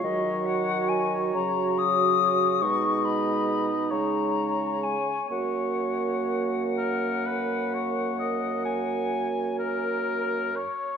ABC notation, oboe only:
X:1
M:12/8
L:1/8
Q:3/8=43
K:F#
V:1 name="Oboe"
c6 d3 c3 | c3 A B c d g2 A2 c |]